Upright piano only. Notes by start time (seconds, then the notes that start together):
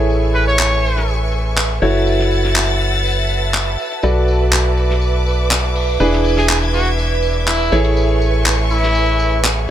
Already playing: E4 G#4 A4 C#5
1.82 E4 F#4 A4 C#5
4.03 F#4 A4 B4 D5
6.00 D4 E4 G#4 B4
7.72 E4 G#4 A4 C#5